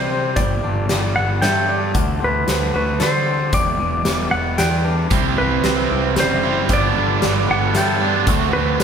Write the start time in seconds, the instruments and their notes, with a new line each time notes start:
Already playing: clean electric guitar C3 E3 G3 E4, fingered electric bass C3, electric slide guitar C5, felt piano D5
0.11 clean electric guitar C4, felt piano C5
0.36 fingered electric bass G1, clean electric guitar G3, electric slide guitar D5, felt piano G5, kick, closed hi-hat
0.63 fingered electric bass G1, clean electric guitar D4
0.89 fingered electric bass G1, clean electric guitar G3, felt piano D5, snare, closed hi-hat
1.16 fingered electric bass G1, clean electric guitar B3, electric slide guitar F#5
1.42 fingered electric bass G2, clean electric guitar A4, felt piano E5, electric slide guitar G5, snare, closed hi-hat
1.69 clean electric guitar D4, felt piano D5
1.95 fingered electric bass D2, clean electric guitar D3, felt piano F#5, kick, closed hi-hat
2.21 fingered electric bass D2, clean electric guitar C4, electric slide guitar B4
2.48 fingered electric bass D2, clean electric guitar D3, felt piano C5, snare, closed hi-hat
2.74 fingered electric bass D2, clean electric guitar F#4, electric slide guitar B4
3.00 fingered electric bass D3, clean electric guitar A4, electric slide guitar C5, felt piano D5, snare, closed hi-hat
3.26 clean electric guitar C4, felt piano C5
3.53 fingered electric bass E1, clean electric guitar E2, electric slide guitar D5, felt piano G5, kick, closed hi-hat
3.79 fingered electric bass E1, clean electric guitar E3
4.05 fingered electric bass E1, clean electric guitar G3, felt piano B4, snare, closed hi-hat
4.31 fingered electric bass E1, clean electric guitar B3, electric slide guitar F#5
4.58 fingered electric bass E2, clean electric guitar B4, felt piano D5, electric slide guitar G5, snare, closed hi-hat
4.85 clean electric guitar D4, felt piano B4
5.11 fingered electric bass C2, overdriven electric guitar C3 G3 C4 E4, clean electric guitar C3, felt piano G5, kick, closed hi-hat
5.38 fingered electric bass C2, clean electric guitar E3, electric slide guitar B4
5.63 fingered electric bass C2, clean electric guitar G3, felt piano C4, snare, closed hi-hat
5.90 fingered electric bass C2, clean electric guitar E4
6.16 fingered electric bass F#1, electric slide guitar C5, felt piano D5, snare, closed hi-hat
6.43 overdriven electric guitar C3 G3 C4 E4, clean electric guitar C4, felt piano C5
6.69 fingered electric bass G1, overdriven electric guitar G2 D3 G3 B3 D4, clean electric guitar G3, felt piano G5, kick, closed hi-hat
6.73 electric slide guitar D5
6.96 fingered electric bass G1, clean electric guitar D4
7.22 fingered electric bass G1, clean electric guitar G3, felt piano D5, snare, closed hi-hat
7.48 fingered electric bass G1, clean electric guitar B3, electric slide guitar F#5
7.75 fingered electric bass G2, clean electric guitar A4, felt piano E5, electric slide guitar G5, snare, closed hi-hat
8.01 overdriven electric guitar G2 D3 G3 B3 D4, clean electric guitar D4, felt piano D5
8.27 fingered electric bass D2, clean electric guitar D3, overdriven electric guitar D3 A3 C4 F#4, felt piano F#5, kick, closed hi-hat
8.53 fingered electric bass D2, clean electric guitar C4, electric slide guitar B4
8.80 clean electric guitar D3, felt piano C5, snare, closed hi-hat